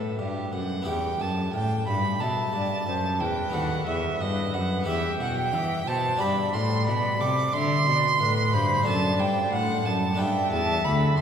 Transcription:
Already playing: harpsichord A2 E4 G4, cello A2, violin A4, flute E5
0.19 harpsichord G2, cello G2, violin G4
0.53 harpsichord F#2, cello F#2, violin F#5
0.82 harpsichord B3 E4 G4
0.87 harpsichord E2, cello E2, violin G5
1.20 harpsichord F#2, cello F#2, violin A5
1.54 harpsichord A2, cello A2, violin G5
1.87 harpsichord G2, cello G2, violin B5
2.20 cello B2, harpsichord B2, flute E5, violin A5
2.53 harpsichord G2, cello G2, flute D5
2.86 harpsichord F#2, cello F#2, flute C5
3.20 harpsichord E2, cello E2, flute B4, violin G5
3.50 harpsichord B3 F#4 A4, violin F#5
3.54 cello D#2, harpsichord D#2
3.87 harpsichord E2, cello E2, violin E5
4.20 cello G2, harpsichord G2, flute B4, violin D#5
4.54 harpsichord F#2, cello F#2, violin F#5
4.83 harpsichord B3 E4 G4
4.87 cello E2, harpsichord E2, violin E5, flute G5
5.20 cello B2, harpsichord B2, violin F#5
5.37 violin G5
5.53 harpsichord E3, cello E3, flute E5
5.87 harpsichord B2, cello B2, flute C5, violin A5
6.16 harpsichord B3 D4 G4, flute D5
6.20 harpsichord G2, cello G2, violin B5
6.54 harpsichord A2, cello A2, violin C6
6.87 harpsichord B2, cello B2, violin B5
7.20 cello C3, harpsichord C3, violin D6
7.53 harpsichord D3, cello D3, flute E5, violin C6
7.86 harpsichord B2, cello B2, flute D5
8.20 harpsichord A2, cello A2, flute B4
8.53 cello G2, harpsichord G2, flute C5, violin B5
8.82 harpsichord C4 D4 A4
8.86 cello F#2, harpsichord F#2, flute D5, violin A5
9.19 cello G2, harpsichord G2, violin G5
9.52 cello A2, harpsichord A2, violin F#5
9.85 harpsichord F#2, cello F#2, violin A5
10.14 harpsichord B3 D4 B4, violin G5
10.19 cello G2, harpsichord G2, flute E5
10.52 cello E2, harpsichord E2, violin A5
10.85 harpsichord D2, cello D2, violin B5
11.18 cello F#2, harpsichord F#2, violin C6

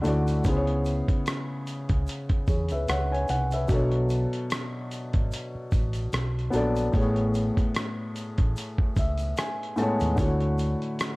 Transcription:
0.02 fingered electric bass D2, felt piano D3 A3 E4, closed hi-hat, shaker
0.06 felt piano F#4 D5
0.27 closed hi-hat, shaker
0.44 fingered electric bass C#2, felt piano C#3 B3 E4, kick, closed hi-hat, shaker
0.49 felt piano G#4 C5
0.57 felt piano C#5
0.67 closed hi-hat
0.85 closed hi-hat, shaker
1.08 kick, closed hi-hat
1.26 cross-stick, closed hi-hat, shaker
1.67 closed hi-hat, shaker
1.89 fingered electric bass C#2, kick, closed hi-hat
2.07 closed hi-hat, shaker
2.29 kick, closed hi-hat
2.47 fingered electric bass E2, felt piano G#4 C#5, kick, closed hi-hat, shaker
2.69 fingered electric bass C#2, felt piano B4 E5, closed hi-hat, shaker
2.88 fingered electric bass C#2, felt piano C#5 F#5, cross-stick, closed hi-hat, shaker
3.12 felt piano C#5 G#5, closed hi-hat
3.28 fingered electric bass C2, felt piano C#5 F#5, closed hi-hat, shaker
3.51 felt piano B4 E5, closed hi-hat, shaker
3.68 fingered electric bass B1, felt piano B2 F#3 D4, kick, closed hi-hat, shaker
3.72 felt piano A4 C#5
3.92 closed hi-hat
4.09 closed hi-hat, shaker
4.33 closed hi-hat
4.50 cross-stick, closed hi-hat, shaker
4.91 closed hi-hat, shaker
5.13 fingered electric bass G#1, kick, closed hi-hat
5.32 closed hi-hat, shaker
5.55 muted fingered electric bass stroke
5.71 fingered electric bass A1, kick, closed hi-hat, shaker
5.93 closed hi-hat, shaker
6.13 fingered electric bass B1, cross-stick, closed hi-hat, shaker
6.39 closed hi-hat
6.50 fingered electric bass A#1, felt piano F#3 B3 D4, closed hi-hat, shaker
6.55 felt piano A4 D5
6.76 closed hi-hat, shaker
6.92 fingered electric bass A1, felt piano A2 A3 B3, kick, closed hi-hat, shaker
6.97 felt piano G#4 C#5
7.16 closed hi-hat
7.34 closed hi-hat, shaker
7.57 kick, closed hi-hat
7.75 cross-stick, closed hi-hat, shaker
8.16 closed hi-hat, shaker
8.38 fingered electric bass A1, kick, closed hi-hat
8.56 closed hi-hat, shaker
8.78 muted fingered electric bass stroke, kick
8.96 fingered electric bass C#2, felt piano E5, kick, closed hi-hat, shaker
9.17 closed hi-hat, shaker
9.37 felt piano G#5, cross-stick, closed hi-hat, shaker
9.63 closed hi-hat
9.76 felt piano A2 A3 B3 A5, closed hi-hat, shaker
9.81 felt piano G#3 C#5
10.00 fingered electric bass D#2, closed hi-hat, shaker
10.16 fingered electric bass D2, felt piano D3 A3 E4, kick, closed hi-hat, shaker
10.20 felt piano F#4 C#5
10.40 closed hi-hat
10.58 closed hi-hat, shaker
10.82 closed hi-hat
10.99 cross-stick, closed hi-hat, shaker

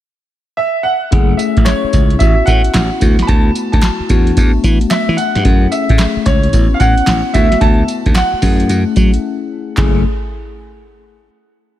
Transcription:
0.57 grand piano E5
0.83 grand piano F#5
1.11 slap bass F#1, tine electric piano A3 C#4 E4 G#4, kick, closed hi-hat
1.37 grand piano E5, closed hi-hat, tambourine
1.57 slap bass A1, kick, closed hi-hat
1.65 grand piano C#5, snare, clap, closed hi-hat, tambourine
1.84 muted slap bass stroke
1.93 slap bass C#2, kick, closed hi-hat, tambourine
2.10 closed hi-hat
2.19 slap bass A1, tine electric piano B3 C#4 E4 F#4, grand piano E5, kick, closed hi-hat, tambourine
2.46 slap bass A2, grand piano F#5, kick, closed hi-hat, tambourine
2.64 closed hi-hat
2.74 slap bass A1, snare, clap, closed hi-hat, tambourine
3.00 slap bass D2, tine electric piano A3 B3 E4 F#4, kick, closed hi-hat, tambourine
3.19 grand piano B5, snare, closed hi-hat
3.27 slap bass D2, grand piano A5, kick, closed hi-hat
3.55 closed hi-hat, tambourine
3.72 slap bass D2, grand piano A5, kick, closed hi-hat
3.82 snare, clap, closed hi-hat, tambourine
4.00 muted slap bass stroke
4.09 slap bass E2, tine electric piano A3 B3 D4 F#4, kick, closed hi-hat, tambourine
4.27 closed hi-hat
4.37 slap bass E2, kick, closed hi-hat, tambourine
4.64 slap bass E3, kick, closed hi-hat, tambourine
4.81 closed hi-hat
4.90 grand piano E5, snare, clap, closed hi-hat, tambourine
5.09 slap bass E3
5.17 grand piano F#5, closed hi-hat, tambourine
5.35 slap bass G2, snare, closed hi-hat
5.44 slap bass F#2, tine electric piano A3 C#4 E4 G#4, kick, closed hi-hat
5.72 grand piano E5, closed hi-hat, tambourine
5.89 slap bass A2, kick, closed hi-hat
5.99 snare, clap, closed hi-hat, tambourine
6.16 muted slap bass stroke
6.26 slap bass C#2, grand piano C#5, kick, closed hi-hat, tambourine
6.43 closed hi-hat
6.53 slap bass A1, tine electric piano B3 C#4 E4 F#4, kick, closed hi-hat, tambourine
6.74 grand piano F5
6.80 slap bass A2, grand piano F#5, kick, closed hi-hat, tambourine
6.97 closed hi-hat
7.07 slap bass A1, snare, clap, closed hi-hat, tambourine
7.33 slap bass D2, tine electric piano A3 B3 E4 F#4, grand piano E5, kick, closed hi-hat, tambourine
7.52 snare, closed hi-hat
7.61 slap bass D2, grand piano A5, kick, closed hi-hat
7.88 closed hi-hat, tambourine
8.06 slap bass D2, kick, closed hi-hat
8.15 grand piano F#5, snare, clap, closed hi-hat, tambourine
8.33 muted slap bass stroke
8.41 slap bass F#2, tine electric piano A3 C#4 E4 G#4, kick, snare, open hi-hat, tambourine
8.60 closed hi-hat
8.69 slap bass F#2, closed hi-hat, tambourine
8.96 slap bass F#3, kick, closed hi-hat, tambourine
9.14 closed hi-hat
9.77 slap bass F#1, tine electric piano A3 C#4 E4 G#4, kick, clap

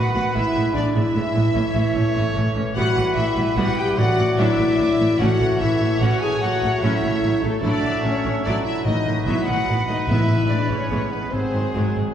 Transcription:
Already playing: trombone section D#3 B3, french horn section F#4, clarinet F#4, trumpet B4, violin section F#5, flute section F#5
0.13 double bass section A1, cello section A2, viola section F#3 B3, french horn section F#4, clarinet F#4, violin section F#5, flute section F#5
0.34 double bass section A1, cello section A2, trombone section E3 G#3, viola section G#3 B3, french horn section E4, clarinet E4, violin section E5, flute section E5
0.54 double bass section A1, cello section A2, viola section G#3 B3
0.73 double bass section A1, cello section A2, viola section G#3 B3, clarinet D4, french horn section D4, violin section D5, flute section D5
0.94 double bass section A1, cello section A2, viola section G#3 B3, clarinet E4, french horn section E4, violin section E5, flute section E5
1.14 double bass section A1, cello section A2, viola section G#3 B3
1.34 double bass section A1, cello section A2, viola section G#3 B3
1.54 double bass section A1, cello section A2, viola section A3 C#4, trombone section A3, trumpet C#5
1.74 double bass section A1, cello section A2, viola section A3 C#4
1.95 double bass section A1, cello section A2, viola section A3 C#4
2.16 double bass section A1, cello section A2, viola section A3 C#4
2.35 double bass section A1, cello section A2, viola section A3 C#4
2.56 double bass section A1, cello section A2, viola section A3 C#4
2.75 double bass section A1, cello section A2, viola section G3 B3, trombone section G3, clarinet F#4, french horn section F#4, trumpet B4, violin section F#5, flute section F#5
2.96 double bass section A1, cello section A2, viola section E3 G3
3.16 double bass section A1, cello section A2, viola section E3, clarinet E4, french horn section E4, violin section E5, flute section E5
3.36 double bass section A1, cello section A2, viola section E3 G3
3.57 double bass section A1, cello section A2, viola section G3 B3, clarinet F#4, french horn section F#4, violin section F#5, flute section F#5
3.77 french horn section G4, clarinet G4, flute section G5, violin section G5
3.97 double bass section A1, timpani A2, cello section A2, viola section D3 F#3, trombone section F#3, french horn section F#4, clarinet F#4, trumpet D5, violin section F#5, flute section F#5
4.18 double bass section A1, cello section A2, viola section E3 A3
4.38 double bass section A1, cello section A2, viola section F#3 D4, clarinet E4, french horn section E4, violin section E5, flute section E5
4.58 double bass section A1, cello section A2, viola section E3 A3
4.78 double bass section A1, cello section A2, viola section D3 F#3
4.99 double bass section A1, cello section A2, viola section E3 A3
5.19 double bass section A1, timpani A2, cello section A2, trombone section E3 A3, viola section A3 C#4, french horn section F#4, clarinet F#4, trumpet C#5, violin section F#5, flute section F#5
5.40 double bass section A1, cello section A2, viola section E3 A3
5.59 double bass section A1, cello section A2, viola section C#3 E3, french horn section E4, clarinet E4, violin section E5, flute section E5
5.81 double bass section A1, cello section A2, viola section E3 A3
6.00 double bass section A1, cello section A2, viola section A3 C#4, french horn section F#4, clarinet F#4, violin section F#5, flute section F#5
6.21 french horn section G#4, clarinet G#4, violin section G#5, flute section G#5
6.41 double bass section A1, cello section A2, viola section C#3 F#3, trombone section F#3, french horn section F#4, clarinet F#4, violin section F#5, flute section F#5
6.62 double bass section A1, cello section A2, viola section C#3 A3
6.81 double bass section A1, cello section A2, viola section F#3 C#4, french horn section E4, clarinet E4, violin section E5, flute section E5
7.02 double bass section A1, cello section A2, viola section C#3 A3
7.22 double bass section A1, cello section A2, viola section C#3 F#3
7.42 double bass section A1, cello section A2, viola section C#3 A3, french horn section A3, clarinet A3, violin section A4, flute section A4
7.63 double bass section A1, cello section A2, viola section F#3 E4, french horn section D4, clarinet D4, violin section D5, flute section D5, trumpet E5
7.84 double bass section A1, cello section A2, viola section E3 D4
8.02 double bass section A1, cello section A2, viola section D3 A3, french horn section C#4, clarinet C#4, violin section C#5, flute section C#5
8.25 double bass section A1, cello section A2, viola section E3 D4
8.44 double bass section A1, cello section A2, viola section F#3 E4, french horn section D4, clarinet D4, violin section D5, flute section D5
8.64 french horn section E4, clarinet E4, violin section E5, flute section E5
8.84 double bass section A1, timpani A2, cello section A2, viola section D#3, trombone section B3, french horn section D#4, clarinet D#4, trumpet B4, violin section D#5, flute section D#5
9.06 double bass section A1, cello section A2, viola section D#3 F#3
9.26 double bass section A1, cello section A2, viola section F#3 B3, french horn section E4, clarinet E4, violin section E5, flute section E5
9.46 double bass section A1, cello section A2, viola section D#3 F#3, french horn section F#4, clarinet F#4, violin section F#5, flute section F#5
9.67 double bass section A1, cello section A2, viola section D#3
9.87 double bass section A1, cello section A2, viola section D#3 F#3, french horn section D#4, clarinet D#4, violin section D#5, flute section D#5
10.07 double bass section A1, timpani A2, cello section A2, trombone section E3 G#3, viola section G#3 B3, french horn section E4, clarinet E4, violin section E5, flute section E5
10.28 double bass section A1, cello section A2, viola section E3 G#3
10.48 double bass section A1, cello section A2, viola section E3, clarinet D4, french horn section D4, violin section D5, flute section D5
10.69 double bass section A1, cello section A2, viola section E3 G#3, french horn section C#4, clarinet C#4, violin section C#5, flute section C#5
10.90 double bass section A1, cello section A2, viola section G#3 B3
11.11 french horn section B3, clarinet B3, violin section B4, flute section B4
11.31 double bass section G#1, cello section G#2, viola section C3 D#3, trombone section D#3 F#3, french horn section C4, clarinet C4, trumpet G#4, violin section C5, flute section C5
11.53 double bass section G#1, cello section G#2, viola section D#3 F#3
11.74 double bass section G#1, cello section G#2, viola section F#3 G#3
11.94 double bass section G#1, cello section G#2, viola section D#3 F#3

